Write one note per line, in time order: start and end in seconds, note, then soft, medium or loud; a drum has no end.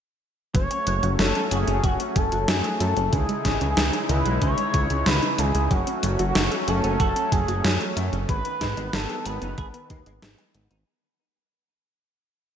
0.55 0.68 F#1 loud
0.55 0.68 F#3 loud
0.55 3.10 F#3 medium
0.55 0.63 F#3 medium
0.55 3.10 A3 medium
0.55 3.10 C#4 medium
0.55 1.15 C#5 loud
0.55 kick loud
0.55 closed hi-hat medium
0.71 0.84 C#4 medium
0.71 closed hi-hat soft
0.87 1.01 F#1 medium
0.87 1.00 F#3 medium
0.87 0.95 F#3 medium
0.87 closed hi-hat medium
1.03 1.17 F#1 medium
1.03 1.08 F#3 medium
1.03 1.16 F#4 medium
1.03 closed hi-hat soft
1.19 1.33 F#1 loud
1.19 1.35 F#3 medium
1.19 1.27 F#3 loud
1.19 1.49 A4 loud
1.19 snare loud
1.19 closed hi-hat medium
1.35 1.43 C#4 medium
1.35 1.51 A4 medium
1.35 closed hi-hat soft
1.51 1.65 F#1 medium
1.51 1.67 F#3 medium
1.51 1.56 F#4 medium
1.51 1.85 G#4 loud
1.51 closed hi-hat loud
1.68 1.81 F#1 medium
1.68 1.76 C#4 medium
1.68 1.81 C#4 medium
1.68 closed hi-hat soft
1.84 1.98 F#1 loud
1.84 1.97 F#3 loud
1.84 2.17 F#4 loud
1.84 1.92 F#4 medium
1.84 kick loud
1.84 closed hi-hat medium
2.00 2.13 C#4 medium
2.00 closed hi-hat soft
2.16 2.30 F#1 medium
2.16 2.24 F#3 medium
2.16 2.29 F#3 medium
2.16 2.48 A4 loud
2.16 kick loud
2.16 closed hi-hat medium
2.32 2.46 F#1 medium
2.32 2.37 F#3 medium
2.32 2.45 F#4 medium
2.32 closed hi-hat soft
2.48 2.62 F#2 loud
2.48 2.56 F#3 medium
2.48 2.64 F#3 medium
2.48 2.82 G#4 loud
2.48 snare loud
2.48 closed hi-hat medium
2.64 2.76 F#3 medium
2.64 2.80 A4 medium
2.64 closed hi-hat soft
2.80 2.94 F#2 medium
2.80 2.96 F#3 medium
2.80 2.93 A3 medium
2.80 3.12 A4 medium
2.80 closed hi-hat loud
2.97 3.10 F#1 medium
2.97 3.01 C#4 medium
2.97 3.10 C#4 medium
2.97 closed hi-hat soft
3.13 3.27 C#2 loud
3.13 3.21 C#3 medium
3.13 5.68 C#3 medium
3.13 3.26 D#3 loud
3.13 5.68 G#3 medium
3.13 5.68 D#4 medium
3.13 5.68 E4 medium
3.13 4.11 G#4 loud
3.13 kick loud
3.13 closed hi-hat medium
3.29 3.42 G#3 medium
3.29 closed hi-hat soft
3.45 3.59 G#1 medium
3.45 3.53 C#3 medium
3.45 3.58 D#3 medium
3.45 kick medium
3.45 snare medium
3.45 closed hi-hat medium
3.61 3.75 C#2 medium
3.61 3.66 C#3 medium
3.61 3.74 C#4 medium
3.61 closed hi-hat soft
3.77 3.91 C#2 loud
3.77 3.85 C#3 loud
3.77 3.93 D#3 medium
3.77 snare loud
3.77 closed hi-hat medium
3.93 4.01 G#3 medium
3.93 4.09 D#4 medium
3.93 closed hi-hat soft
4.09 4.23 C#2 medium
4.09 4.25 D#3 medium
4.09 4.14 C#4 medium
4.09 4.41 B4 loud
4.09 closed hi-hat loud
4.25 4.39 B1 medium
4.25 4.34 G#3 medium
4.25 4.39 G#3 medium
4.25 closed hi-hat soft
4.41 4.56 C#2 loud
4.41 4.55 D#3 loud
4.41 4.50 C#4 medium
4.41 5.08 C#5 loud
4.41 kick loud
4.41 closed hi-hat medium
4.58 4.71 G#3 medium
4.58 closed hi-hat soft
4.74 4.88 C#2 loud
4.74 4.82 C#3 medium
4.74 4.87 D#3 medium
4.74 kick loud
4.74 closed hi-hat medium
4.90 5.04 C#2 medium
4.90 4.95 C#3 medium
4.90 5.03 C#4 medium
4.90 closed hi-hat soft
5.06 5.20 C#2 loud
5.06 5.14 C#3 medium
5.06 5.22 D#3 medium
5.06 5.40 B4 loud
5.06 snare loud
5.06 closed hi-hat medium
5.22 5.34 C#3 medium
5.22 5.38 D#4 medium
5.22 closed hi-hat soft
5.38 5.52 C#2 medium
5.38 5.54 D#3 medium
5.38 5.51 E3 medium
5.38 5.72 G#4 medium
5.38 closed hi-hat medium
5.54 5.69 C#2 medium
5.54 5.59 G#3 medium
5.54 5.68 G#3 medium
5.54 closed hi-hat soft
5.71 5.85 F#1 loud
5.71 8.26 F#3 medium
5.71 5.84 F#3 loud
5.71 5.79 F#3 medium
5.71 8.26 A3 medium
5.71 8.26 C#4 medium
5.71 6.69 F#4 loud
5.71 kick loud
5.71 closed hi-hat medium
5.87 6.00 C#4 medium
5.87 closed hi-hat soft
6.03 6.17 F#1 loud
6.03 6.11 F#3 medium
6.03 6.16 F#3 medium
6.03 closed hi-hat medium
6.19 6.33 F#1 medium
6.19 6.24 F#3 medium
6.19 6.32 F#4 medium
6.19 closed hi-hat soft
6.35 6.49 F#1 loud
6.35 6.43 F#3 loud
6.35 6.51 F#3 medium
6.35 snare loud
6.35 closed hi-hat medium
6.51 6.60 C#4 medium
6.51 6.67 A4 medium
6.51 closed hi-hat soft
6.67 6.81 F#1 loud
6.67 6.83 F#3 medium
6.67 6.72 F#4 medium
6.67 6.99 A4 medium
6.67 closed hi-hat medium
6.84 6.98 F#1 medium
6.84 6.97 C#4 medium
6.84 6.92 C#4 medium
6.84 closed hi-hat soft
7.00 7.14 F#1 loud
7.00 7.13 F#3 loud
7.00 7.08 F#4 medium
7.00 7.30 A4 loud
7.00 kick loud
7.00 closed hi-hat medium
7.16 7.29 C#4 medium
7.16 closed hi-hat soft
7.32 7.46 F#1 loud
7.32 7.45 F#3 medium
7.32 7.40 F#3 medium
7.32 7.93 G#4 medium
7.32 kick loud
7.32 closed hi-hat loud
7.48 7.62 F#1 medium
7.48 7.53 F#3 medium
7.48 7.61 F#4 medium
7.48 closed hi-hat soft
7.64 7.78 F#2 loud
7.64 7.80 F#3 medium
7.64 7.73 F#3 medium
7.64 snare loud
7.64 closed hi-hat medium
7.80 7.93 F#3 medium
7.80 7.96 A4 medium
7.80 closed hi-hat soft
7.97 8.10 F#2 medium
7.97 8.12 F#3 medium
7.97 8.09 A3 medium
7.97 closed hi-hat medium
8.13 8.27 F#1 medium
8.13 8.26 C#4 medium
8.13 8.18 C#4 medium
8.13 closed hi-hat soft
8.29 8.43 G#1 loud
8.29 8.42 D#3 loud
8.29 10.84 D#3 medium
8.29 8.37 G#3 medium
8.29 10.84 B3 medium
8.29 8.95 B4 loud
8.29 kick loud
8.29 closed hi-hat medium
8.45 8.58 B3 medium
8.45 closed hi-hat soft
8.61 8.75 G#2 loud
8.61 8.74 D#3 medium
8.61 8.69 G#3 medium
8.61 kick medium
8.61 snare medium
8.61 closed hi-hat medium
8.77 8.91 G#1 medium
8.77 8.82 G#3 medium
8.77 8.90 D#4 medium
8.77 closed hi-hat soft
8.93 9.07 G#1 loud
8.93 9.09 D#3 medium
8.93 9.01 G#3 loud
8.93 9.27 A4 loud
8.93 snare loud
8.93 closed hi-hat medium
9.09 9.18 D#4 medium
9.09 9.25 G#4 medium
9.09 closed hi-hat soft
9.26 9.39 G#1 medium
9.26 9.41 D#3 medium
9.26 9.31 G#4 medium
9.26 10.22 B4 loud
9.26 closed hi-hat medium
9.42 9.56 F#1 medium
9.42 9.55 B3 medium
9.42 9.50 D#4 medium
9.42 closed hi-hat soft
9.58 9.72 G#1 loud
9.58 9.71 D#3 loud
9.58 9.66 G#4 medium
9.58 kick loud
9.58 closed hi-hat medium
9.74 9.87 B3 medium
9.74 closed hi-hat soft
9.90 10.04 D#2 medium
9.90 10.03 D#3 medium
9.90 9.98 G#3 medium
9.90 kick loud
9.90 closed hi-hat medium
10.06 10.20 G#1 medium
10.06 10.11 G#3 medium
10.06 10.19 D#4 medium
10.06 closed hi-hat soft
10.22 10.36 G#1 loud
10.22 10.38 D#3 medium
10.22 10.31 G#3 medium
10.22 snare loud
10.22 closed hi-hat medium
10.38 10.51 G#3 medium
10.38 10.54 G#4 medium
10.38 closed hi-hat soft
10.55 10.69 G#1 medium
10.55 10.70 D#3 medium
10.55 10.67 B3 medium
10.55 closed hi-hat medium
10.71 10.85 G#1 medium
10.71 10.84 B3 medium
10.71 10.76 D#4 medium
10.71 closed hi-hat soft